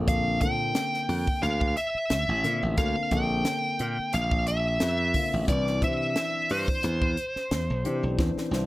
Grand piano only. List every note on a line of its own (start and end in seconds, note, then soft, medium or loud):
0.00 0.35 D3 medium
0.00 0.35 A#3 medium
0.00 0.36 C4 medium
0.00 0.36 A4 medium
0.41 1.64 D3 medium
0.41 1.64 A#3 medium
0.41 1.65 C4 medium
0.41 1.65 A4 medium
2.44 2.75 D3 medium
2.44 2.75 A#3 medium
2.44 2.75 C4 medium
2.44 2.76 F4 medium
2.77 3.08 D3 medium
2.77 3.09 A#3 medium
2.77 3.09 C4 medium
2.77 3.09 A4 medium
3.12 4.34 D3 medium
3.12 4.35 A#3 medium
3.12 4.35 C4 medium
3.12 4.35 A4 medium
5.14 5.45 D3 medium
5.14 5.45 A#3 medium
5.14 5.46 C4 medium
5.14 5.46 F4 medium
5.47 5.79 E3 medium
5.47 5.79 C4 medium
5.47 5.79 D4 medium
5.47 5.80 B4 medium
5.81 7.05 E3 medium
5.81 7.05 C4 medium
5.81 7.06 D4 medium
5.81 7.06 C5 medium
7.84 8.16 E3 medium
7.84 8.16 C4 medium
7.84 8.16 D4 medium
7.84 8.16 G4 medium
8.18 8.49 E3 medium
8.18 8.50 C4 medium
8.18 8.50 D4 medium
8.18 8.50 C5 medium
8.52 8.66 E3 medium
8.52 8.66 C4 medium
8.52 8.66 D4 medium
8.52 8.66 C5 medium